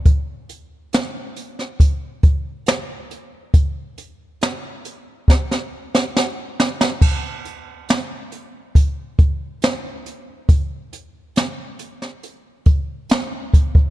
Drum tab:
CC |----------------|----------------|x---------------|----------------|
HH |x-x-x-x-x-x-x-x-|x-x-x-x---------|--x-x-x-x-x-x-x-|x-x-x-x-x-x-x-x-|
SD |----o--o----o---|----o---oo-oo-oo|----o-------o---|----o--o----o---|
BD |o-------o-o-----|o-------o-------|o-------o-o-----|o---------o---oo|